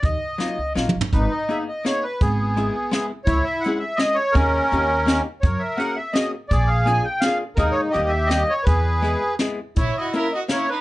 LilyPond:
<<
  \new Staff \with { instrumentName = "Accordion" } { \time 3/4 \key ees \minor \tempo 4 = 166 << { ees''2 r4 | \key gis \minor b'8 dis''8 e''8 dis''8 cis''8 b'8 | gis'2~ gis'8 r8 | cis''8 e''8 fis''8 e''8 dis''8 cis''8 |
ais'2~ ais'8 r8 | cis''8 e''8 fis''8 e''8 dis''8 r8 | d''8 eis''8 gis''8 g''8 eis''8 r8 | ais'8 cis''8 dis''8 e''8 \tuplet 3/2 { dis''4 cis''8 } |
b'2 r4 | cis''8 dis''8 e''8 dis''8 cis''8 b'8 | } \\ { r2. | dis'4. r4. | b2~ b8 r8 | e'4. r4. |
cis'2~ cis'8 r8 | ais'4. r4. | gis'4. r4. | dis'4 g'4. r8 |
gis'2 r4 | e'4. r4. | } >> }
  \new Staff \with { instrumentName = "Violin" } { \time 3/4 \key ees \minor r2. | \key gis \minor r2. | r2. | r2. |
r2. | r2. | r2. | r2. |
r2. | e'8 fis'8 ais'8 fis'8 e'8 dis'8 | }
  \new Staff \with { instrumentName = "Hollow-body jazz guitar" } { \time 3/4 \key ees \minor r4 <ges bes ees' f'>8 r8 <ges bes ees' f'>8 r8 | \key gis \minor r4 <ais b dis' gis'>8 r8 <ais b dis' gis'>8 r8 | r4 <gis b e' gis'>8 r8 <gis b e' gis'>8 r8 | r4 <gis cis' e' gis'>8 r8 <gis cis' e' gis'>8 r8 |
<ais cis' dis' gis'>4 <ais cis' dis' g'>8 r8 <ais cis' dis' g'>8 r8 | r4 <ais cis' fis' gis'>8 r8 <ais cis' fis' gis'>8 r8 | r4 <ais d' eis' gis'>8 r8 <ais d' eis' gis'>8 r8 | <gis ais dis' gis'>4 <g ais dis' g'>8 r8 <g ais dis' g'>8 r8 |
r4 <gis b e' gis'>8 r8 <gis b e' gis'>8 r8 | r4 <ais cis' e' ais'>8 r8 <ais cis' e' ais'>8 r8 | }
  \new Staff \with { instrumentName = "Upright bass" } { \clef bass \time 3/4 \key ees \minor ees,8 r4 des,8 bes,,8 aes,,8 | \key gis \minor gis,,8 r2 r8 | gis,,2 r4 | cis,8 r2 r8 |
dis,4 dis,2 | fis,8 r2 r8 | ais,,2 r4 | dis,8 r8 dis,2 |
e,2 r4 | ais,,8 r2 r8 | }
  \new DrumStaff \with { instrumentName = "Drums" } \drummode { \time 3/4 <hh bd>4 <hh sn>4 \tuplet 3/2 { sn8 toml8 tomfh8 } | <hh bd>4 hh4 <hh sn>4 | <hh bd>4 hh4 <hh sn>4 | <hh bd>4 hh4 <hh sn>4 |
<hh bd>4 hh4 <hh sn>4 | <hh bd>4 hh4 <hh sn>4 | <hh bd>4 hh4 <hh sn>4 | <hh bd>4 hh4 <hh sn>4 |
<hh bd>4 hh4 <hh sn>4 | <hh bd>4 hh4 <hh sn>4 | }
>>